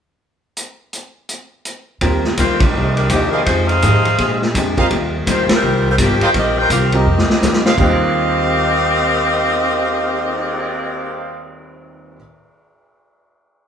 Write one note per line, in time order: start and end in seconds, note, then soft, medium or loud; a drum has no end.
0.57 closed hi-hat medium
0.93 closed hi-hat medium
1.29 closed hi-hat medium
1.65 closed hi-hat soft
2.01 2.37 D#2 medium
2.01 2.26 D#3 medium
2.01 2.26 G3 soft
2.01 2.22 A#3 soft
2.01 2.22 C4 soft
2.01 2.27 C4 medium
2.01 2.22 F4 medium
2.01 2.27 F4 soft
2.01 2.22 G4 medium
2.01 kick soft
2.01 ride medium
2.24 snare soft
2.37 2.73 D2 medium
2.37 2.62 D#3 medium
2.37 2.63 G3 medium
2.37 2.60 A#3 medium
2.37 2.63 C4 medium
2.37 2.60 F4 medium
2.37 2.64 F4 medium
2.37 2.60 G4 medium
2.37 2.60 C5 medium
2.37 kick soft
2.37 hi-hat pedal medium
2.37 ride medium
2.60 2.95 G3 medium
2.60 2.94 D4 medium
2.60 2.94 D#4 medium
2.60 2.96 A#4 medium
2.60 kick medium
2.60 ride medium
2.73 3.09 C2 medium
2.73 2.98 C3 soft
2.73 2.98 F3 soft
2.73 2.99 A#3 soft
2.73 2.99 D#4 soft
2.96 3.09 G3 medium
2.96 3.09 D4 medium
2.96 3.08 D#4 medium
2.96 3.09 A#4 medium
2.96 ride soft
3.09 3.45 D#2 medium
3.09 3.35 C3 medium
3.09 3.32 D#3 medium
3.09 3.35 F3 medium
3.09 3.31 A#3 medium
3.09 3.35 A#3 medium
3.09 3.30 D4 medium
3.09 3.36 D#4 medium
3.09 3.31 G4 medium
3.09 kick soft
3.09 hi-hat pedal medium
3.09 ride medium
3.31 3.44 G3 medium
3.31 3.44 D4 medium
3.31 3.43 D#4 medium
3.31 3.42 G#4 medium
3.31 3.44 A#4 medium
3.31 3.42 C5 medium
3.31 3.42 D#5 medium
3.31 3.42 F5 medium
3.44 3.81 F2 medium
3.44 3.71 F2 soft
3.44 3.67 G#3 medium
3.44 3.66 D#4 medium
3.44 3.67 F4 medium
3.44 3.65 C5 medium
3.44 kick soft
3.44 ride medium
3.49 3.71 D#3 soft
3.49 3.72 G#3 soft
3.49 3.72 C4 soft
3.66 4.17 D#4 medium
3.66 4.40 G#4 medium
3.66 4.40 C5 medium
3.66 4.40 F5 loud
3.66 ride soft
3.82 4.06 F2 medium
3.82 4.17 G#2 medium
3.82 4.07 D#3 medium
3.82 4.07 G#3 medium
3.82 4.07 C4 medium
3.82 kick soft
3.82 hi-hat pedal medium
3.82 ride medium
4.05 ride soft
4.18 4.53 A#2 medium
4.18 4.43 A#2 soft
4.18 4.44 G#3 soft
4.18 4.44 D4 soft
4.18 4.44 G4 medium
4.18 kick soft
4.18 ride medium
4.42 snare soft
4.54 4.89 F2 medium
4.54 4.79 A#2 medium
4.54 4.79 G#3 medium
4.54 4.79 D4 medium
4.54 4.80 G4 medium
4.54 kick soft
4.54 hi-hat pedal medium
4.54 ride medium
4.77 4.89 A#3 medium
4.77 4.89 C4 medium
4.77 4.89 F4 medium
4.77 4.87 G4 medium
4.77 4.90 G4 medium
4.77 4.87 C5 medium
4.77 4.86 D#5 medium
4.77 4.87 F5 medium
4.77 kick soft
4.77 ride soft
4.90 5.25 D#2 medium
4.90 5.14 D#3 soft
4.90 5.15 G3 medium
4.90 5.15 C4 medium
4.90 5.16 F4 medium
4.90 kick soft
4.90 ride soft
5.26 5.47 D2 medium
5.26 5.50 D#3 medium
5.26 5.50 G3 medium
5.26 5.50 C4 medium
5.26 5.51 F4 medium
5.26 kick soft
5.26 hi-hat pedal medium
5.26 ride medium
5.31 5.50 A#3 medium
5.31 5.50 F4 medium
5.31 5.50 G4 medium
5.31 5.50 C5 medium
5.49 muted upright bass stroke soft
5.49 snare medium
5.49 ride medium
5.55 5.85 G3 medium
5.55 5.86 C4 medium
5.55 5.86 F4 medium
5.55 5.86 A#4 medium
5.62 5.97 C2 medium
5.62 5.86 D#3 soft
5.62 5.87 G3 medium
5.62 5.87 C4 soft
5.62 5.87 F4 soft
5.90 5.96 G3 medium
5.90 5.95 C4 medium
5.90 5.95 F4 medium
5.90 5.95 A#4 medium
5.98 6.19 G1 medium
5.98 6.22 D#3 medium
5.98 6.22 G3 medium
5.98 6.21 A#3 medium
5.98 6.23 C4 medium
5.98 6.23 F4 medium
5.98 6.21 G4 medium
5.98 kick soft
5.98 hi-hat pedal medium
5.98 ride medium
6.02 6.21 F3 medium
6.02 6.21 C4 medium
6.21 6.29 F4 medium
6.21 6.30 G4 medium
6.21 6.29 A#4 medium
6.21 6.30 C5 medium
6.21 6.29 C5 medium
6.21 6.30 D#5 medium
6.21 6.30 F5 medium
6.21 6.30 G5 medium
6.21 muted upright bass stroke soft
6.21 ride soft
6.34 6.69 A#1 medium
6.34 6.58 D#3 soft
6.34 6.58 G3 soft
6.34 6.59 C4 soft
6.34 6.57 C4 medium
6.34 6.59 F4 soft
6.34 6.57 G4 medium
6.34 6.57 A#4 medium
6.34 6.57 D#5 medium
6.34 kick soft
6.34 ride medium
6.59 6.71 F4 medium
6.59 6.70 A#4 medium
6.59 6.71 C5 medium
6.59 6.71 G5 loud
6.70 7.05 C2 medium
6.70 6.94 D#3 medium
6.70 6.94 G3 medium
6.70 6.92 C4 medium
6.70 6.95 C4 medium
6.70 6.95 F4 medium
6.70 6.92 G4 medium
6.70 6.91 A#4 medium
6.70 6.92 F5 medium
6.70 kick soft
6.70 hi-hat pedal medium
6.70 ride medium
6.92 7.05 A#3 medium
6.92 7.05 C4 medium
6.92 7.66 C4 medium
6.92 7.05 F4 medium
6.92 7.05 G4 medium
6.92 7.66 G4 medium
6.92 7.66 A#4 medium
6.92 7.66 D#5 medium
6.92 ride soft
7.06 7.27 F2 medium
7.06 7.30 D#3 soft
7.06 7.31 G3 soft
7.06 7.31 C4 soft
7.06 7.31 F4 soft
7.18 snare medium
7.30 muted upright bass stroke soft
7.30 snare medium
7.42 7.76 D2 medium
7.42 7.66 D#3 medium
7.42 7.66 G3 medium
7.42 7.66 C4 medium
7.42 7.66 F4 medium
7.42 snare medium
7.42 hi-hat pedal medium
7.53 snare medium
7.65 7.74 G4 medium
7.65 7.74 C5 medium
7.65 7.74 D#5 medium
7.65 7.74 F5 medium
7.65 snare medium
7.75 12.15 D#2 medium
7.75 12.11 D#2 medium
7.75 12.14 D#3 medium
7.75 12.16 D#3 soft
7.75 11.46 G4 medium
7.75 11.46 F5 loud
7.75 kick soft
7.75 crash medium
7.79 12.16 G3 medium
7.79 12.16 C4 soft
7.79 11.42 C4 medium
7.79 12.18 C4 medium
7.79 12.17 F4 medium
7.79 11.42 G4 medium
7.79 12.17 G4 medium
7.79 11.42 A#4 medium
7.79 11.46 C5 medium
7.79 11.46 D#5 medium
7.79 11.42 D#5 medium
7.86 12.20 F4 medium
8.00 cymbal swell soft